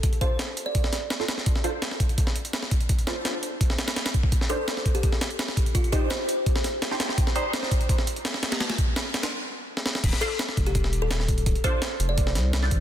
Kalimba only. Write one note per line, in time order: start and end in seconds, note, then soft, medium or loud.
0.21 0.48 C5 medium
0.66 1.16 D5 medium
4.50 4.71 A4 medium
4.95 5.16 G4 medium
5.75 5.91 F4 medium
5.92 6.09 G4 medium
6.10 6.60 C5 medium
10.21 10.43 A4 medium
10.67 10.88 G4 medium
11.02 11.23 A4 medium
11.64 11.91 C5 medium
12.09 12.59 D5 medium